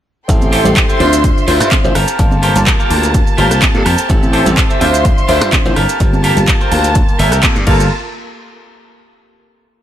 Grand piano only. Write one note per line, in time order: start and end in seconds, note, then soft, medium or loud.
0.28 0.62 C4 medium
0.28 0.62 E4 medium
0.28 0.62 G4 medium
0.28 0.62 A4 medium
0.65 0.97 C4 medium
0.65 0.97 E4 medium
0.65 0.97 G4 medium
0.65 0.98 A4 medium
1.00 1.45 D4 medium
1.00 1.45 F4 medium
1.00 1.45 C5 loud
1.00 1.45 E5 medium
1.47 1.81 D4 medium
1.47 1.81 F4 medium
1.47 1.81 C5 medium
1.47 1.81 E5 medium
1.84 1.91 D4 loud
1.84 1.91 E4 medium
1.84 1.91 F4 medium
1.84 1.91 C5 loud
2.18 2.52 A#3 medium
2.18 2.53 F4 medium
2.18 2.53 G4 medium
2.18 2.53 A5 medium
2.55 2.88 A#3 medium
2.55 2.88 F4 medium
2.55 2.88 G4 medium
2.55 2.88 A5 medium
2.90 3.35 A#3 medium
2.90 3.35 F4 medium
2.90 3.35 G4 medium
2.90 3.36 A5 loud
3.38 3.71 A#3 medium
3.38 3.72 F4 medium
3.38 3.72 G4 medium
3.38 3.72 A5 medium
3.74 3.81 A#3 loud
3.74 3.81 F4 medium
3.74 3.81 G4 medium
3.74 3.81 A4 loud
4.09 4.43 C4 medium
4.09 4.43 E4 medium
4.09 4.43 G4 medium
4.09 4.43 A4 medium
4.46 4.78 C4 medium
4.46 4.78 E4 medium
4.46 4.78 G4 medium
4.46 4.79 A4 medium
4.80 5.26 D4 medium
4.80 5.26 F4 medium
4.80 5.26 C5 loud
4.80 5.26 E5 medium
5.28 5.62 D4 medium
5.28 5.62 F4 medium
5.28 5.62 C5 loud
5.28 5.62 E5 medium
5.65 5.72 D4 loud
5.65 5.72 E4 medium
5.65 5.72 F4 medium
5.65 5.72 C5 loud
6.00 6.33 A#3 medium
6.00 6.34 F4 medium
6.00 6.34 G4 medium
6.00 6.34 A5 medium
6.36 6.69 A#3 medium
6.36 6.69 F4 medium
6.36 6.69 G4 medium
6.36 6.69 A5 medium
6.71 7.16 A#3 medium
6.71 7.16 F4 medium
6.71 7.17 G4 medium
6.71 7.17 A5 loud
7.42 7.55 A#3 medium
7.42 7.55 F4 medium
7.42 7.55 G4 medium
7.42 7.55 A4 loud
7.66 7.84 A#3 medium
7.66 7.85 F4 medium
7.66 7.85 G4 medium
7.66 7.85 A4 medium